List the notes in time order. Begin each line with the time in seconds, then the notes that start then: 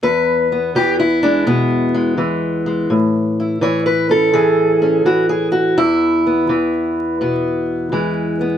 0.03 E2 B4
0.52 B3
0.75 E3 G4
0.99 E4
1.23 G#3 D4
1.46 B2 B3
1.94 G#3
2.18 E3
2.66 G#3
2.90 A2
3.40 E4
3.61 E3 C#5
3.86 B4
4.09 C#4 A4
4.33 E3 G#4
4.82 C#4
5.05 E3 F#4
5.29 G#4
5.52 F#4
5.77 E2 E4
6.27 B3
6.49 E3
7.21 B2 B3
7.92 E3 G#3
8.41 B3